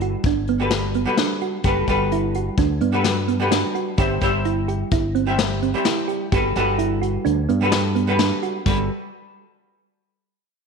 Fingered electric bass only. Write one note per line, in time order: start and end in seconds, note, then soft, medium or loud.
0.00 0.14 G1 medium
0.24 1.05 G1 medium
1.64 1.85 F#1 medium
1.87 2.48 G1 medium
2.58 2.78 D2 medium
2.81 3.62 G2 medium
3.98 4.19 G1 loud
4.22 4.82 G1 medium
4.91 5.73 G1 medium
6.32 6.52 G1 loud
6.56 7.16 G1 medium
7.26 7.46 D2 medium
7.50 8.30 G2 medium
8.66 8.88 G1 medium